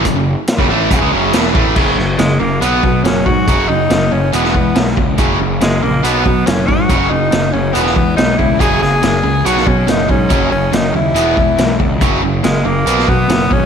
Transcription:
<<
  \new Staff \with { instrumentName = "Tenor saxophone" } { \time 4/4 \key b \major \tempo 4 = 140 r1 | r4 gis8 ais8 b4 cis'8 fis'8~ | fis'8 dis'4 cis'8 b4. r8 | r4 gis8 ais8 b4 cis'8 fis'8~ |
fis'8 dis'4 cis'8 b4 dis'8 e'8 | gis'8 gis'4. fis'8 cis'8 dis'8 cis'8~ | cis'8 cis'8 dis'8 e'2 r8 | r4 gis8 ais4 b4 cis'8 | }
  \new Staff \with { instrumentName = "Overdriven electric guitar" } { \clef bass \time 4/4 \key b \major <fis, cis>16 <fis, cis>8 r8 <fis, cis>16 <a, e a>8 <fis, cis>16 <cis gis>16 <fis, cis fis>8 <e, b, e>8 <a, e a>8 | <fis, cis fis>8 <fis, cis>8 <fis, cis>8 <fis, cis>8 <b, fis b>8 <b, fis>8 <b, fis>8 <b, fis>8 | <fis, cis fis>8 <fis, cis>8 <fis, cis>8 <fis, cis>8 <e gis b>8 <e gis>8 <e gis>8 <e gis>8 | <fis, cis fis>8 <fis, cis>8 <fis, cis>8 <fis, cis>8 <b, fis b>8 <b, fis>8 <b, fis>8 <b, fis>8 |
<fis, cis fis>8 <fis, cis>8 <fis, cis>8 <fis, cis>8 <e gis b>8 <e gis>8 <e gis>8 <e gis>8 | <fis, cis fis>8 <fis, cis>8 <fis, cis>8 <fis, cis>8 <b, fis b>8 <b, fis>8 <b, fis>8 <b, fis>8 | <fis, cis fis>8 <fis, cis>8 <fis, cis>8 <fis, cis>8 <e gis b>8 <e gis>8 <e gis>8 <e gis>8 | <fis, cis fis>8 <fis, cis>8 <fis, cis>8 <fis, cis>8 <b, fis b>8 <b, fis>8 <b, fis>8 <b, fis>8 | }
  \new Staff \with { instrumentName = "Overdriven electric guitar" } { \clef bass \time 4/4 \key b \major <fis, cis>16 <fis, cis>8 r8 <fis, cis>16 <a, e a>8 <fis, cis>16 <cis gis>16 <fis, cis fis>8 <e, b, e>8 <a, e a>8 | <fis, cis fis>8 <fis, cis>8 <fis, cis>8 <fis, cis>8 <b, fis b>8 <b, fis>8 <b, fis>8 <b, fis>8 | <fis, cis fis>8 <fis, cis>8 <fis, cis>8 <fis, cis>8 <e, b, e>8 <e, b,>8 <e, b,>8 <e, b,>8 | <fis, cis fis>8 <fis, cis>8 <fis, cis>8 <fis, cis>8 <b, fis b>8 <b, fis>8 <b, fis>8 <b, fis>8 |
<fis, cis fis>8 <fis, cis>8 <fis, cis>8 <fis, cis>8 <e, b, e>8 <e, b,>8 <e, b,>8 <e, b,>8 | <fis, cis fis>8 <fis, cis>8 <fis, cis>8 <fis, cis>8 <b, fis b>8 <b, fis>8 <b, fis>8 <b, fis>8 | <fis, cis fis>8 <fis, cis>8 <fis, cis>8 <fis, cis>8 <e, b, e>8 <e, b,>8 <e, b,>8 <e, b,>8 | <fis, cis fis>8 <fis, cis>8 <fis, cis>8 <fis, cis>8 <b, fis b>8 <b, fis>8 <b, fis>8 <b, fis>8 | }
  \new Staff \with { instrumentName = "Picked electric bass" } { \clef bass \time 4/4 \key b \major fis,,16 fis,,8 r8 fis,,16 a,,8 fis,,16 cis,16 fis,,8 e,,8 a,,8 | fis,,8 fis,,8 fis,,8 fis,,8 b,,8 b,8 fis,,8 gis,8 | fis,,8 fis,,8 fis,,8 fis,,8 e,,8 e,8 b,,8 cis,8 | fis,,8 fis,,8 fis,,8 ais,,8 b,,8 b,8 fis,,8 gis,8 |
fis,,8 fis,,8 fis,,8 fis,,8 e,,8 e,8 b,,8 cis,8 | fis,,8 fis,,8 fis,,8 cis,8 b,,8 b,8 fis,,8 gis,8 | fis,,8 fis,,8 fis,,8 dis,8 e,,8 e,8 b,,8 cis,8 | fis,,8 fis,,8 fis,,8 fis,,8 b,,8 b,8 fis,,8 gis,,8 | }
  \new DrumStaff \with { instrumentName = "Drums" } \drummode { \time 4/4 <hh bd>4 <hh sn>16 bd8. <hh bd>4 <hh sn>8 bd8 | <cymc bd>8 sn8 <hh sn>4 hh8 bd8 <hh sn>8 bd8 | <hh bd>4 <hh sn>4 hh16 sn16 bd8 <hh sn>16 sn16 bd8 | <hh bd>4 <hh sn>4 hh8 bd8 <hh sn>8 bd8 |
<hh bd>4 <hh sn>4 hh16 sn16 bd8 <hh sn>8 bd8 | <hh bd>8 sn8 <hh sn>4 hh16 sn16 bd8 <hh sn>8 bd8 | <hh bd>4 <hh sn>4 hh8 bd8 <hh sn>8 bd8 | <hh bd>4 <hh sn>4 hh16 sn16 bd8 <hh sn>8 bd8 | }
>>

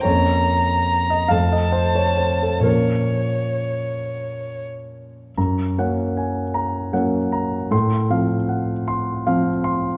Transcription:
<<
  \new Staff \with { instrumentName = "Violin" } { \time 6/8 \key bes \minor \tempo 4. = 48 bes''4. a''4. | des''2~ des''16 r8. | r2. | r2. | }
  \new Staff \with { instrumentName = "Grand piano" } { \time 6/8 \key bes \minor des''4~ des''16 ees''16 f''16 ees''16 c''16 des''16 c''16 a'16 | bes'4. r4. | bes''8 ges''8 aes''8 bes''8 ges''8 bes''8 | c'''8 f''8 ges''8 c'''8 f''8 c'''8 | }
  \new Staff \with { instrumentName = "Grand piano" } { \time 6/8 \key bes \minor <f, bes des'>4. <f, a c'>4. | <bes, f bes des'>2. | ges,8 <ges bes des'>4. <ges bes des'>4 | a,8 <f c'>4. <f c'>4 | }
>>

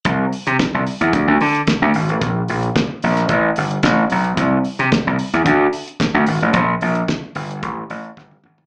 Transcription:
<<
  \new Staff \with { instrumentName = "Slap bass" } { \clef bass \time 4/4 \key c \mixolydian \tempo 4 = 111 c,8 r16 c16 r16 c,16 r16 e,16 d,16 d,16 d8 r16 d,16 aes,,16 a,,16 | bes,,8 bes,,8 r8 bes,,8 a,,8 g,,8 a,,8 b,,8 | c,8 r16 c16 r16 c,16 r16 e,16 d,8 r8. d,16 aes,,16 a,,16 | bes,,8 bes,,8 r8 g,,8 a,,8 a,,8 g,,8 aes,,8 | }
  \new DrumStaff \with { instrumentName = "Drums" } \drummode { \time 4/4 <hh bd>8 hho16 hh16 <hh bd sn>8 hho16 hh16 <hh bd>8 hho16 hh16 <hh bd sn>8 hho16 hh16 | <hh bd>8 hho16 hh16 <hh bd sn>8 hho16 <hh sn>16 <hh bd>8 hho16 hh16 <hh bd sn>8 hho16 hh16 | <hh bd>8 hho16 hh16 <hh bd sn>8 hho16 hh16 <hh bd>8 hho16 hh16 <hh bd sn>8 hho16 hh16 | <hh bd>8 hho16 hh16 <hh bd sn>8 hho16 hh16 <hh bd>8 hho16 hh16 <bd sn>16 tommh16 toml16 tomfh16 | }
>>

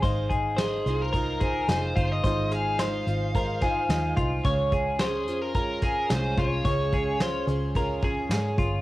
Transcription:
<<
  \new Staff \with { instrumentName = "Lead electric guitar" } { \time 4/4 \key aes \major \tempo 4 = 109 r4 aes'8. bes'4~ bes'16 c''8. ees''16~ | ees''8 f''2. r8 | r4 aes'8. bes'4~ bes'16 c''8 des''8~ | des''4. r2 r8 | }
  \new Staff \with { instrumentName = "Clean electric guitar" } { \time 4/4 \key aes \major c''8 aes'8 c''4 bes'8 aes'4 f'8 | c''8 aes'8 c''4 bes'8 aes'4 f'8 | des''8 aes'8 c''4 bes'8 aes'4 f'8 | des''8 aes'8 c''4 bes'8 aes'4 f'8 | }
  \new Staff \with { instrumentName = "Twelve-string acoustic guitar" } { \time 4/4 \key aes \major <aes ees' f' c''>4 <aes ees' f' c''>8 <ees' f' c''>8 <aes ees' f' c''>8 <ees' f' c''>8 <aes ees' f' c''>4 | <aes ees' f' c''>4 <aes ees' f' c''>8 <ees' f' c''>8 <aes ees' f' c''>8 <ees' f' c''>8 <aes ees' f' c''>4 | <des aes des' f' aes'>4 <aes des' f' aes'>8 <des' f' aes'>8 <aes des' f' aes'>8 <des' f' aes'>8 <aes des' f' aes'>4 | <des aes des' f' aes'>4 <aes des' f' aes'>8 <des' f' aes'>8 <aes des' f' aes'>8 <des' f' aes'>8 <aes des' f' aes'>4 | }
  \new Staff \with { instrumentName = "Picked electric bass" } { \clef bass \time 4/4 \key aes \major aes,,4. c,4. f,,8 g,,8 | aes,,4. aes,,4. ees,8 c,8 | des,4. f,4. c,8 c,8 | des,4. des,4. aes,8 g,,8 | }
  \new DrumStaff \with { instrumentName = "Drums" } \drummode { \time 4/4 <hh bd>8 <hh bd>8 <hh sn>8 hh8 <hh bd>8 <hh bd>8 <hh sn>8 <hh bd>8 | <hh bd>8 hh8 <hh sn>8 hh8 <hh bd>8 <hh bd sn>8 <hh sn>8 <hh bd>8 | <hh bd>8 <hh bd>8 <hh sn>8 hh8 <hh bd>8 <hh bd sn>8 <hh sn>8 <hh bd>8 | <hh bd>8 <hh bd>8 <hh sn>8 hh8 <hh bd>8 <hh bd>8 <hh sn>8 <hh bd>8 | }
>>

